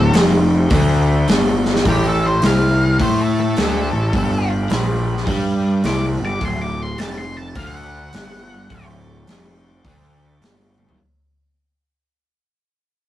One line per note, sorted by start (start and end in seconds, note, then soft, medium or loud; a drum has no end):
0.00 0.13 D2 loud
0.00 1.83 D4 medium
0.00 1.83 F#4 medium
0.00 0.13 A4 medium
0.00 1.83 C5 medium
0.13 0.67 F1 loud
0.13 0.71 F2 loud
0.13 snare loud
0.13 open hi-hat medium
0.70 1.24 D2 medium
0.70 1.27 D3 loud
0.70 kick loud
0.70 open hi-hat medium
1.28 1.82 G1 medium
1.28 1.85 G2 loud
1.28 snare loud
1.28 open hi-hat medium
1.65 snare medium
1.76 snare medium
1.85 2.39 A1 loud
1.85 2.42 A2 loud
1.85 4.12 G4 medium
1.85 2.07 G4 medium
1.85 4.13 A4 medium
1.85 4.13 C#5 medium
1.85 kick loud
1.85 open hi-hat medium
2.07 2.25 A4 medium
2.26 2.44 C5 medium
2.42 2.96 C2 medium
2.42 2.99 C3 loud
2.42 snare loud
2.42 open hi-hat medium
2.46 3.00 F5 loud
3.00 3.53 A2 medium
3.00 3.56 A3 loud
3.00 3.20 C5 medium
3.00 kick loud
3.00 open hi-hat medium
3.21 3.39 A4 medium
3.40 4.50 A4 loud
3.56 3.90 D2 medium
3.56 3.91 D3 loud
3.56 snare loud
3.56 open hi-hat medium
3.92 4.13 A1 medium
3.92 4.09 A2 medium
4.12 4.67 G1 medium
4.12 4.69 G2 loud
4.12 6.39 F4 medium
4.12 6.39 G4 medium
4.12 6.39 B4 medium
4.12 kick loud
4.12 open hi-hat medium
4.70 5.24 A#1 loud
4.70 5.27 A#2 loud
4.70 snare loud
4.70 open hi-hat medium
5.17 snare soft
5.26 5.81 G2 medium
5.26 5.83 G3 loud
5.26 kick loud
5.26 open hi-hat medium
5.84 6.17 C2 medium
5.84 6.18 C3 loud
5.84 6.04 D6 loud
5.84 snare loud
5.84 open hi-hat medium
6.19 6.40 G1 medium
6.19 6.37 G2 medium
6.25 6.45 D6 loud
6.40 6.95 D1 loud
6.40 6.98 D2 loud
6.40 8.68 D4 medium
6.40 8.68 F#4 medium
6.40 8.68 C5 medium
6.40 kick loud
6.40 open hi-hat medium
6.45 6.62 C6 medium
6.62 6.82 D6 medium
6.82 7.00 C6 medium
6.98 7.53 F1 loud
6.98 7.55 F2 loud
6.98 7.17 A5 loud
6.98 snare loud
6.98 open hi-hat medium
7.18 7.36 C6 loud
7.37 7.55 A5 medium
7.55 8.09 D2 medium
7.55 8.12 D3 loud
7.55 7.75 F5 medium
7.55 kick loud
7.55 open hi-hat medium
7.75 8.86 F#5 loud
8.13 8.67 G1 medium
8.13 8.69 G2 loud
8.13 snare loud
8.13 open hi-hat medium
8.69 9.23 D1 medium
8.69 9.27 D2 loud
8.69 10.97 F#4 medium
8.69 10.96 C5 medium
8.69 10.97 D5 medium
8.69 kick loud
8.69 open hi-hat medium
9.27 9.81 F1 loud
9.27 9.84 F2 loud
9.27 snare loud
9.27 open hi-hat medium
9.85 10.38 D2 loud
9.85 10.41 D3 loud
9.85 kick loud
9.85 open hi-hat medium
10.41 10.95 G1 loud
10.41 10.98 G2 loud
10.41 snare loud
10.41 open hi-hat medium
10.78 high tom medium
10.89 floor tom medium